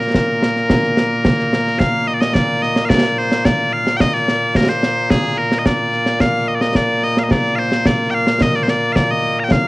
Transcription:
Already playing: A#2 A#3 A#4
0.01 snare
0.14 concert bass drum, snare
0.42 snare
0.56 snare
0.70 concert bass drum, snare
0.83 snare
0.97 snare
1.25 concert bass drum, snare
1.39 snare
1.53 snare
1.67 snare
1.79 F5, concert bass drum, snare
2.08 D#5
2.14 D5
2.21 D#5, snare
2.34 D5, concert bass drum, snare
2.62 D#5, snare
2.76 snare
2.85 D5 F5
2.90 concert bass drum, snare
3.18 C5
3.32 snare
3.45 D5, concert bass drum, snare
3.73 F5
3.87 snare
3.97 G5, concert bass drum, snare
4.01 D#5
4.14 D5, snare
4.28 snare
4.55 A#4, concert bass drum, snare
4.69 C5
4.83 snare
5.11 G#4, concert bass drum, snare
5.38 A#4
5.52 snare
5.59 D#5
5.66 D5, concert bass drum, snare
5.93 snare
6.06 snare
6.20 F5, concert bass drum, snare
6.48 D#5
6.55 D5
6.61 D#5, snare
6.68 D#5
6.75 D5, concert bass drum, snare
7.03 D#5, snare
7.17 F5, snare
7.24 D#5
7.31 D5, concert bass drum, snare
7.56 C5 F5
7.72 snare
7.86 D5, concert bass drum, snare
8.11 F5 G5
8.27 snare
8.41 D#5, concert bass drum, snare
8.55 D5, snare
8.63 C5
8.68 D5, snare
8.93 D5 F5, concert bass drum, snare
9.11 D#5
9.40 A#5
9.44 G5
9.51 F5, concert bass drum, snare

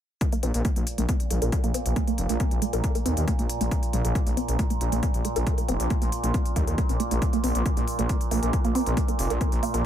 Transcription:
0.21 A#2, kick, closed hi-hat
0.32 A#3, closed hi-hat
0.43 A#1 C4, closed hi-hat
0.54 A#1, closed hi-hat
0.65 A#3, kick, closed hi-hat
0.76 A#1 A#3, closed hi-hat
0.87 closed hi-hat
0.98 A#1 A#3, closed hi-hat
1.09 C4, kick, closed hi-hat
1.20 closed hi-hat
1.31 A#1 A3, closed hi-hat
1.42 A#1 A#4, closed hi-hat
1.52 kick, closed hi-hat
1.64 A#1 A#3, closed hi-hat
1.74 C4, closed hi-hat
1.86 A#1, closed hi-hat
1.96 A#3, kick, closed hi-hat
2.08 A#3, closed hi-hat
2.18 F1, closed hi-hat
2.29 A#1 A#3, closed hi-hat
2.40 C4, kick, closed hi-hat
2.51 A#1, closed hi-hat
2.62 A3, closed hi-hat
2.73 A#1 A#4, closed hi-hat
2.84 kick, closed hi-hat
2.95 A#3, closed hi-hat
3.06 D#2 C4, closed hi-hat
3.17 D#2, closed hi-hat
3.28 A#3, kick, closed hi-hat
3.39 A#1 A#3, closed hi-hat
3.50 closed hi-hat
3.61 A#1 A#3, closed hi-hat
3.71 C4, kick, closed hi-hat
3.83 closed hi-hat
3.93 A#1 A3, closed hi-hat
4.05 A#1 A#4, closed hi-hat
4.15 kick, closed hi-hat
4.27 A#1 A#3, closed hi-hat
4.37 C4, closed hi-hat
4.48 A#1, closed hi-hat
4.59 A#3, kick, closed hi-hat
4.70 A#3, closed hi-hat
4.81 A#1, closed hi-hat
4.92 A#1 A#3, closed hi-hat
5.03 C4, kick, closed hi-hat
5.14 A#1, closed hi-hat
5.25 A3, closed hi-hat
5.36 A#1 A#4, closed hi-hat
5.47 kick, closed hi-hat
5.58 A#3, closed hi-hat
5.68 F1 C4, closed hi-hat
5.80 A#1, closed hi-hat
5.90 A#3, kick, closed hi-hat
6.02 A#1 A#3, closed hi-hat
6.12 closed hi-hat
6.24 A#1 A#3, closed hi-hat
6.34 C4, kick, closed hi-hat
6.46 closed hi-hat
6.56 D#2 A#3, kick, closed hi-hat
6.67 D#2 A#4, closed hi-hat
6.78 A#3, kick, closed hi-hat
6.89 A#1 C#4, closed hi-hat
7.00 A#3, closed hi-hat
7.11 A#1 A#3, closed hi-hat
7.22 kick, closed hi-hat
7.33 A#3, closed hi-hat
7.44 A#1 C4, open hi-hat
7.55 A#1, closed hi-hat
7.66 A#3, kick, closed hi-hat
7.77 A#1 A#3, closed hi-hat
7.88 open hi-hat
7.99 A#1 A#3, closed hi-hat
8.09 C4, kick, closed hi-hat
8.21 closed hi-hat
8.31 A#1 A#3, open hi-hat
8.43 A#1 A#4, closed hi-hat
8.53 kick, closed hi-hat
8.65 A#1 A#3, closed hi-hat
8.75 C4, open hi-hat
8.86 A#1, closed hi-hat
8.97 A#3, kick, closed hi-hat
9.08 A#3, closed hi-hat
9.19 F1, open hi-hat
9.30 A#1 A#3, closed hi-hat
9.41 C4, kick, closed hi-hat
9.52 A#1, closed hi-hat
9.63 A#3, open hi-hat
9.74 A#1 A#4, closed hi-hat

